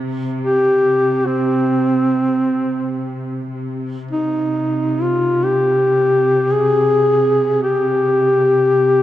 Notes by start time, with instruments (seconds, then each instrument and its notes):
Already playing: string section C3
0.41 duduk G4
1.26 duduk C4
3.53 string section C3
4.11 duduk D#4
5.02 duduk F4
5.44 duduk G4
6.52 duduk G#4
7.63 duduk G4